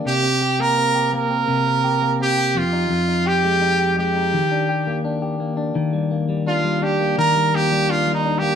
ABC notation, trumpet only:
X:1
M:4/4
L:1/16
Q:1/4=84
K:Eb
V:1 name="Trumpet"
G3 B3 B6 G2 F2- | F2 G4 G6 z4 | z4 F2 G2 B2 G2 (3F2 E2 G2 |]